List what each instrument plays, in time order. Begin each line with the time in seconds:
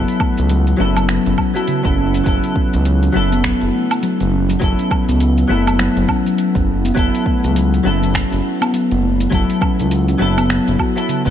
Already playing: clean electric guitar F#3 B3 E4 A4
0.08 open hi-hat, shaker
0.20 steel tongue drum A3, kick, low woodblock
0.38 analog synth bass C#2, open hi-hat, shaker
0.49 steel tongue drum F#3, open hi-hat, shaker
0.67 open hi-hat, shaker
0.77 analog synth bass F#1, clean electric guitar F#3 B3 E4, steel tongue drum C#4
0.81 clean electric guitar A4
0.96 steel tongue drum F#3, low woodblock, shaker
1.09 finger snap, open hi-hat, shaker
1.26 analog synth bass F#1, steel tongue drum C#4, open hi-hat, shaker
1.38 steel tongue drum F#3, kick, low woodblock
1.54 clean electric guitar F#3 B3 E4 A4, steel tongue drum F#4, open hi-hat, shaker
1.68 steel tongue drum C#3, open hi-hat, shaker
1.83 analog synth bass F#1, clean electric guitar F#3 B3 E4 A4, steel tongue drum C#4, kick, open hi-hat, shaker
1.97 steel tongue drum C#4
2.14 open hi-hat, shaker
2.24 analog synth bass F#1, clean electric guitar F#3 B3 E4, steel tongue drum F#3, kick, open hi-hat, shaker
2.28 clean electric guitar A4
2.44 open hi-hat, shaker
2.56 steel tongue drum C#4, kick
2.73 analog synth bass C#2, steel tongue drum F#3, open hi-hat, shaker
2.85 open hi-hat, shaker
3.03 steel tongue drum C#4, open hi-hat, shaker
3.13 analog synth bass F#1, clean electric guitar F#3 B3 E4
3.17 clean electric guitar A4
3.32 steel tongue drum B3, shaker
3.44 steel tongue drum F#3, finger snap, kick, open hi-hat, shaker
3.61 analog synth bass F#1, open hi-hat, shaker
3.73 steel tongue drum A3
3.91 open hi-hat, low woodblock, shaker
4.02 steel tongue drum F#3, open hi-hat, shaker
4.20 analog synth bass F#1, open hi-hat, shaker
4.32 steel tongue drum C#4
4.50 steel tongue drum F#3, open hi-hat, shaker
4.60 analog synth bass F#1, clean electric guitar F#3 B3 E4, kick, open hi-hat, shaker
4.64 clean electric guitar A4
4.79 steel tongue drum C#4, open hi-hat, shaker
4.91 kick, low woodblock
5.08 analog synth bass C#2, steel tongue drum B3, open hi-hat, shaker
5.20 steel tongue drum F#3, open hi-hat, shaker
5.38 open hi-hat, shaker
5.48 analog synth bass F#1, clean electric guitar F#3 B3 E4 A4, steel tongue drum A3
5.67 low woodblock, shaker
5.79 steel tongue drum F#3, finger snap, open hi-hat, shaker
5.96 analog synth bass F#1, open hi-hat, shaker
6.08 steel tongue drum C#4, kick, low woodblock
6.26 steel tongue drum F#3, open hi-hat, shaker
6.38 open hi-hat, shaker
6.55 analog synth bass F#1, steel tongue drum C#4, kick, open hi-hat, shaker
6.85 steel tongue drum B3, open hi-hat, shaker
6.95 analog synth bass F#1, clean electric guitar F#3 B3 E4, steel tongue drum F#3, kick, open hi-hat, shaker
6.99 clean electric guitar A4
7.15 open hi-hat, shaker
7.26 steel tongue drum A3, kick
7.44 analog synth bass C#2, open hi-hat, shaker
7.56 steel tongue drum F#3, open hi-hat, shaker
7.74 open hi-hat, shaker
7.84 analog synth bass F#1, clean electric guitar F#3 B3 E4 A4, steel tongue drum C#4
8.02 steel tongue drum F#3, shaker
8.14 finger snap, kick, open hi-hat, shaker
8.31 analog synth bass F#1, steel tongue drum C#4, open hi-hat, shaker
8.61 steel tongue drum B3, open hi-hat, low woodblock, shaker
8.73 steel tongue drum F#3, open hi-hat, shaker
8.91 analog synth bass F#1, open hi-hat, shaker
9.02 steel tongue drum A3
9.20 open hi-hat, shaker
9.30 analog synth bass F#1, clean electric guitar F#3 B3 E4, steel tongue drum F#3, kick, open hi-hat, shaker
9.34 clean electric guitar A4
9.50 open hi-hat, shaker
9.61 steel tongue drum C#4, kick, low woodblock
9.79 analog synth bass C#2, steel tongue drum F#3, open hi-hat, shaker
9.91 open hi-hat, shaker
10.08 steel tongue drum C#4, open hi-hat, shaker
10.18 analog synth bass F#1, clean electric guitar F#3 B3 E4 A4
10.38 steel tongue drum B3, open hi-hat, low woodblock, shaker
10.50 steel tongue drum F#3, finger snap, open hi-hat, shaker
10.68 analog synth bass F#1, open hi-hat, shaker
10.79 steel tongue drum F#4, kick, low woodblock
10.96 clean electric guitar F#3 B3 E4 A4, open hi-hat, shaker
11.08 steel tongue drum C#3, open hi-hat, shaker
11.25 analog synth bass E1, clean electric guitar F#3 B3 E4, kick, open hi-hat, shaker